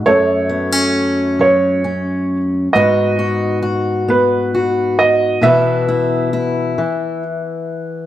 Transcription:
<<
  \new Staff \with { instrumentName = "Upright piano" } { \time 6/8 \key gis \phrygian \tempo 4. = 45 << { cis''4. cis''4 r8 | dis''4 r8 b'4 dis''8 | e''2 r4 | } \\ { a'4. r4. | b'4. r4. | b'2 r4 | } >> }
  \new Staff \with { instrumentName = "Steel-string acoustic guitar" } { \time 6/8 \key gis \phrygian << { a8 b16 cis'4~ cis'16 cis'4 | <b dis' fis'>8 fis'8 fis'4 fis'4 | <e b e'>8 e'8 e'4 r4 | } \\ { fis,4. fis4. | gis,4. b4. | b,4. e4. | } >> }
>>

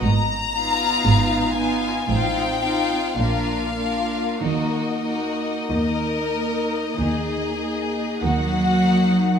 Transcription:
<<
  \new Staff \with { instrumentName = "Violin section" } { \time 4/4 \key ees \minor \tempo 4 = 49 bes''4. aes''8 g''4 f''4 | ees''2. ges''4 | }
  \new Staff \with { instrumentName = "Flute section" } { \time 4/4 \key ees \minor r1 | r2. ges''4 | }
  \new Staff \with { instrumentName = "Violin section" } { \time 4/4 \key ees \minor r8 <f' f''>4 <f' f''>8 <f' f''>8 <f' f''>8 <f' bes'>8 <f' bes'>8 | <ges' bes'>8 <ges' bes'>8 bes'4 aes'4 ges'4 | }
  \new Staff \with { instrumentName = "Viola section" } { \time 4/4 \key ees \minor r8 <ces' ees'>4 <ces' ees'>8 <c' ees'>8 <c' ees'>8 <bes d'>8 <bes d'>8 | <bes ees'>8 <bes ees'>4 <bes ees'>4 <bes ees'>4 <bes ees'>8 | }
  \new Staff \with { instrumentName = "Cello section" } { \clef bass \time 4/4 \key ees \minor aes,4 aes,4 a,4 bes,4 | ees4 ees4 ees4 <ees ges>4 | }
  \new Staff \with { instrumentName = "Double bass section" } { \clef bass \time 4/4 \key ees \minor aes,,4 aes,,4 a,,4 bes,,4 | ees,4 ees,4 ees,4 ees,4 | }
>>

